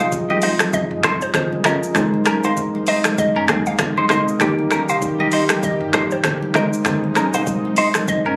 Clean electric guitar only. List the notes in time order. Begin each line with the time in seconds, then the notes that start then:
0.01 D#4
0.30 G4 D#5
0.43 D#4 C5
1.04 D#4 C5
1.65 C#4 A#4
2.27 C#4 A#4
2.44 D#4 C5
2.88 D#4 C5
3.36 C#4 A#4
3.49 C4 G#4
3.98 D#4 C5
4.11 D#4 C5
4.41 A#3 G4
4.72 C#4 A#4
4.89 D#4 C5
5.20 G4 D#5
5.33 D#4 C5
5.94 D#4 C5
6.55 D#4 A#4
7.17 C#4 A#4
7.34 D#4 C5
7.78 D#4 C5
8.26 C#4 A#4